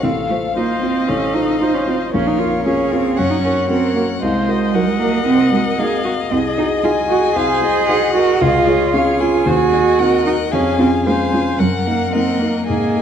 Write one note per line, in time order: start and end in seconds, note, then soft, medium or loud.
0.03 0.29 A1 soft
0.03 0.11 C4 soft
0.03 0.55 A4 soft
0.03 2.09 F5 soft
0.03 0.58 F5 soft
0.30 0.38 A3 soft
0.30 0.53 F4 soft
0.30 0.54 C5 soft
0.56 0.81 A#3 soft
0.56 0.79 D#4 soft
0.56 0.79 F4 soft
0.56 1.09 C5 soft
0.56 0.80 C5 soft
0.56 2.14 D#5 soft
0.82 1.09 C4 medium
0.82 1.06 F4 soft
0.82 1.06 C5 soft
1.07 1.34 A1 soft
1.07 1.35 C#4 medium
1.07 1.62 A4 soft
1.33 1.60 D#4 medium
1.33 1.59 F4 soft
1.33 1.59 C5 soft
1.61 1.76 D#4 soft
1.61 1.85 D#4 soft
1.61 1.85 F4 soft
1.61 2.13 C5 soft
1.61 1.85 C5 soft
1.74 1.87 C#4 medium
1.87 1.95 C4 soft
1.87 2.11 F4 soft
1.87 2.11 C5 soft
2.13 2.39 A#1 soft
2.13 2.29 C#4 medium
2.13 2.67 A#4 soft
2.13 3.16 C#5 soft
2.13 2.65 F5 soft
2.27 2.40 D#4 medium
2.39 2.64 F4 medium
2.39 2.63 F4 soft
2.39 2.63 A#4 soft
2.64 2.92 C#4 medium
2.64 2.89 C#4 soft
2.64 2.89 F4 soft
2.64 3.19 G#4 soft
2.64 2.90 A#4 soft
2.64 3.18 F5 soft
2.91 3.19 C4 medium
2.91 3.16 F4 soft
2.91 3.16 A#4 soft
3.17 3.44 F#2 soft
3.17 3.32 C#4 medium
3.17 3.70 F#4 soft
3.17 4.20 C#5 soft
3.17 3.69 F#5 soft
3.30 3.42 D#4 medium
3.43 3.69 C#4 medium
3.43 3.68 F#4 soft
3.43 3.68 A#4 soft
3.70 3.95 C4 medium
3.70 3.93 C#4 soft
3.70 3.94 F#4 soft
3.70 4.21 A#4 soft
3.70 3.94 A#4 soft
3.70 4.24 F#5 soft
3.95 4.03 A#3 medium
3.95 4.20 F#4 soft
3.95 4.20 A#4 soft
4.21 4.48 C2 soft
4.21 4.75 G#3 medium
4.21 4.77 C5 soft
4.21 4.75 D#5 soft
4.21 4.51 F5 soft
4.49 4.72 F#4 soft
4.49 4.72 A#4 soft
4.49 6.85 D#5 medium
4.74 4.88 F#3 medium
4.74 4.98 D#4 soft
4.74 4.98 F#4 soft
4.74 5.78 A#4 soft
4.74 4.99 A#4 soft
4.74 5.80 F#5 soft
4.86 5.01 G#3 medium
5.00 5.25 A#3 medium
5.00 5.24 F#4 soft
5.00 5.24 A#4 soft
5.25 5.51 C3 soft
5.25 5.51 C4 medium
5.52 5.60 G#3 medium
5.52 5.76 F#4 soft
5.52 5.76 A#4 soft
5.78 5.86 A#3 soft
5.78 6.02 D#4 soft
5.78 6.03 F#4 soft
5.78 6.04 G#4 soft
5.78 6.03 A#4 soft
5.78 6.32 F5 soft
6.05 6.13 F#4 soft
6.05 6.29 F#4 soft
6.05 6.29 A#4 soft
6.30 6.57 C2 soft
6.30 6.39 C4 medium
6.30 7.38 G#4 soft
6.30 7.37 D#5 soft
6.58 6.66 D#4 medium
6.58 6.81 F#4 soft
6.58 6.82 G#4 soft
6.83 7.07 D#4 soft
6.83 6.92 F4 medium
6.83 7.07 F#4 soft
6.83 7.07 G#4 soft
6.83 7.88 G#5 medium
7.09 7.35 F#4 medium
7.09 7.33 F#4 soft
7.09 7.33 G#4 soft
7.36 7.61 C2 soft
7.36 8.13 G#4 medium
7.36 7.88 C5 soft
7.36 7.63 F5 soft
7.62 7.85 F#4 soft
7.62 7.86 G#4 soft
7.62 8.96 D#5 medium
7.88 8.12 D#4 soft
7.88 8.13 F#4 soft
7.88 8.13 G#4 soft
7.88 7.96 C5 soft
7.88 8.42 F#5 medium
8.14 8.43 F#4 medium
8.14 8.39 F#4 soft
8.14 8.39 G#4 soft
8.14 8.43 A#4 medium
8.41 8.67 C#2 medium
8.41 9.19 F4 medium
8.41 8.93 G#4 soft
8.41 8.69 F5 medium
8.67 8.91 F4 soft
8.67 8.92 G#4 soft
8.67 8.93 C#5 medium
8.94 9.17 C#4 soft
8.94 9.18 F4 soft
8.94 10.01 G#4 soft
8.94 9.18 G#4 soft
8.94 9.46 C#5 soft
8.94 9.22 F5 medium
9.20 9.48 F4 medium
9.20 9.44 F4 soft
9.20 9.44 G#4 soft
9.20 10.00 G#5 soft
9.46 9.72 D#2 soft
9.46 10.26 F#4 medium
9.46 9.54 C5 soft
9.72 9.97 D#4 soft
9.72 9.97 F#4 soft
9.72 10.53 D#5 soft
9.99 10.23 C4 soft
9.99 10.24 D#4 soft
9.99 10.24 F#4 soft
9.99 10.52 A#4 medium
9.99 10.24 F#5 medium
10.25 10.50 D#4 soft
10.25 10.34 D#4 medium
10.25 10.50 F#4 soft
10.25 10.53 F#5 soft
10.52 10.79 F2 soft
10.52 10.79 C#4 medium
10.52 11.07 G#4 soft
10.52 11.05 F5 soft
10.52 11.06 G#5 soft
10.79 10.87 C4 medium
10.79 11.03 C#4 soft
10.79 11.04 F4 soft
11.05 11.31 G#3 soft
11.05 11.14 A#3 medium
11.05 11.31 C#4 soft
11.05 11.31 F4 soft
11.05 11.60 C5 soft
11.05 11.60 F5 soft
11.05 11.61 G#5 soft
11.32 11.40 G#3 soft
11.32 11.57 C#4 soft
11.32 11.58 F4 soft
11.59 11.86 F#2 soft
11.59 11.67 F#3 medium
11.59 12.68 A#4 soft
11.59 12.14 F#5 soft
11.59 12.13 F#5 soft
11.85 12.12 A#3 medium
11.85 12.11 D#4 soft
11.85 12.12 A#4 soft
12.12 12.38 A#3 soft
12.12 12.41 C4 medium
12.12 12.39 D#4 soft
12.12 12.39 A#4 soft
12.12 12.67 D#5 soft
12.12 12.67 F#5 soft
12.40 12.67 A#3 medium
12.40 12.66 D#4 soft
12.40 12.66 A#4 soft
12.67 12.95 G#2 soft
12.67 13.02 A#3 medium
12.67 13.02 G#4 soft
12.67 13.02 D#5 soft
12.67 13.02 G#5 soft
12.97 13.02 D#4 soft
12.97 13.02 G#4 soft